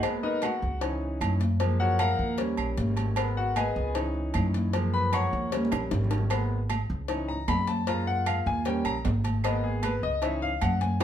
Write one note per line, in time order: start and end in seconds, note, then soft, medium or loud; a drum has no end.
0.03 0.59 G#3 medium
0.03 0.60 A#3 medium
0.03 0.60 B3 medium
0.03 cowbell loud
0.03 high conga soft
0.03 low agogo loud
0.03 claves medium
0.23 0.42 D#4 medium
0.23 0.42 A#4 medium
0.23 0.42 B4 medium
0.23 0.42 D#5 medium
0.23 high conga soft
0.42 0.80 F#4 medium
0.42 0.79 F#5 medium
0.42 cowbell medium
0.42 high conga loud
0.42 low agogo loud
0.42 claves medium
0.62 1.17 C#2 loud
0.62 high conga soft
0.81 1.37 E3 medium
0.81 1.38 C#4 medium
0.81 1.38 D#4 medium
0.81 cowbell loud
0.81 high conga soft
0.81 low agogo medium
1.01 high conga soft
1.21 2.13 F#2 loud
1.21 cowbell medium
1.21 high conga medium
1.21 low agogo loud
1.21 claves medium
1.40 cowbell medium
1.40 high conga medium
1.60 2.35 F3 medium
1.60 2.34 G#3 medium
1.60 2.35 A#3 medium
1.60 cowbell loud
1.60 low agogo loud
1.80 1.99 F#4 medium
1.80 1.99 A#4 medium
1.80 1.99 C#5 medium
1.80 1.99 F#5 loud
1.80 high conga soft
1.99 2.36 A#4 medium
1.99 2.36 F5 medium
1.99 2.36 F#5 medium
1.99 2.36 A#5 loud
1.99 cowbell medium
1.99 high conga medium
1.99 low agogo loud
1.99 claves medium
2.19 2.55 D#2 loud
2.19 high conga soft
2.38 3.13 G3 medium
2.38 3.13 A#3 soft
2.38 3.14 C#4 medium
2.38 cowbell loud
2.38 high conga soft
2.38 low agogo medium
2.57 2.76 A#1 medium
2.57 high conga soft
2.57 low agogo loud
2.57 claves medium
2.77 3.70 G#1 loud
2.77 cowbell medium
2.77 high conga medium
2.97 cowbell medium
2.97 high conga medium
2.97 low agogo medium
3.16 3.91 G#3 medium
3.16 3.92 B3 medium
3.16 3.92 A#4 medium
3.16 cowbell loud
3.16 low agogo loud
3.16 claves medium
3.37 3.56 F#4 medium
3.37 3.56 F#5 medium
3.37 high conga soft
3.56 3.93 G#4 medium
3.56 3.93 B4 medium
3.56 3.93 D#5 medium
3.56 3.93 G#5 medium
3.56 cowbell medium
3.56 high conga loud
3.56 low agogo loud
3.56 claves medium
3.76 4.31 C#2 loud
3.76 high conga soft
3.95 4.70 E3 medium
3.95 4.70 C#4 soft
3.95 4.70 D#4 medium
3.95 cowbell loud
3.95 high conga soft
3.95 low agogo medium
4.15 high conga soft
4.34 5.27 F#2 loud
4.34 cowbell medium
4.34 high conga medium
4.34 low agogo loud
4.34 claves medium
4.54 cowbell medium
4.54 high conga medium
4.73 5.49 F3 medium
4.73 5.48 G#3 medium
4.73 5.48 A#3 soft
4.73 cowbell loud
4.73 low agogo loud
4.93 5.13 B4 medium
4.93 5.13 B5 medium
4.93 high conga soft
5.13 5.50 C#5 medium
5.13 5.50 F#5 medium
5.13 5.50 A#5 medium
5.13 5.50 C#6 medium
5.13 cowbell medium
5.13 high bongo medium
5.13 high conga medium
5.13 low agogo loud
5.13 claves medium
5.32 5.69 D#2 loud
5.32 high conga soft
5.52 6.27 G3 medium
5.52 6.27 A#3 medium
5.52 6.27 C#4 medium
5.52 cowbell loud
5.52 high conga medium
5.52 low agogo medium
5.65 high conga medium
5.72 5.90 A#1 medium
5.72 low bongo medium
5.72 low agogo loud
5.72 claves medium
5.91 6.83 G#1 loud
5.91 cowbell medium
5.91 low bongo medium
5.91 low conga medium
6.04 low conga medium
6.11 cowbell medium
6.11 low bongo loud
6.11 low agogo medium
6.18 low conga medium
6.30 6.56 G#3 medium
6.30 6.57 A#3 soft
6.30 6.57 B3 medium
6.30 cowbell loud
6.30 high conga soft
6.30 low agogo loud
6.30 claves medium
6.50 high conga soft
6.70 cowbell medium
6.70 high conga loud
6.70 low agogo loud
6.70 claves medium
6.90 7.44 C#2 loud
6.90 high conga soft
7.08 7.35 E3 medium
7.08 7.35 C#4 soft
7.08 7.35 D#4 medium
7.08 cowbell loud
7.08 high conga soft
7.08 low agogo medium
7.28 7.48 A#5 medium
7.28 high conga soft
7.48 8.40 F#2 loud
7.48 7.67 B5 medium
7.48 cowbell medium
7.48 high conga medium
7.48 low timbale medium
7.48 low agogo loud
7.48 claves medium
7.67 7.87 A5 medium
7.67 cowbell medium
7.67 high conga medium
7.87 8.62 G#3 medium
7.87 8.62 A#3 soft
7.87 8.62 F4 medium
7.87 8.07 A#5 medium
7.87 cowbell loud
7.87 high conga soft
7.87 low agogo loud
8.07 8.26 F#5 loud
8.07 high conga soft
8.26 8.46 F5 medium
8.26 cowbell medium
8.26 high conga medium
8.26 low agogo loud
8.26 claves medium
8.46 8.83 D#2 loud
8.46 8.66 G#5 medium
8.46 high conga soft
8.65 8.92 G3 medium
8.65 8.92 A#3 soft
8.65 8.92 C#4 medium
8.65 8.85 G5 medium
8.65 cowbell loud
8.65 high conga soft
8.65 low agogo medium
8.85 9.03 A#1 medium
8.85 8.97 A#5 loud
8.85 high conga soft
8.85 low agogo loud
8.85 claves medium
9.05 9.97 G#1 loud
9.05 cowbell medium
9.05 high conga medium
9.05 low timbale medium
9.24 cowbell medium
9.24 high conga medium
9.24 low agogo medium
9.44 10.00 G#3 medium
9.44 10.00 A#3 medium
9.44 10.00 B3 medium
9.44 9.63 D#5 medium
9.44 cowbell loud
9.44 low agogo loud
9.44 claves medium
9.64 9.83 G#4 medium
9.64 high conga soft
9.83 10.03 B4 medium
9.83 cowbell medium
9.83 high conga loud
9.83 low agogo loud
9.83 claves medium
10.03 10.58 C#2 loud
10.03 10.22 D#5 medium
10.03 high conga soft
10.22 10.48 E3 medium
10.22 10.48 C#4 soft
10.22 10.49 D#4 medium
10.22 10.42 E5 medium
10.22 cowbell loud
10.22 high conga soft
10.22 low agogo medium
10.42 10.61 F5 loud
10.42 high conga soft
10.61 11.04 F#2 loud
10.61 10.81 F#5 medium
10.61 cowbell medium
10.61 high conga medium
10.61 low agogo loud
10.61 claves medium
10.81 11.00 G#5 medium
10.81 cowbell medium
10.81 high conga medium
11.00 11.04 G#3 medium
11.00 11.04 A#3 medium
11.00 high timbale loud
11.00 low agogo medium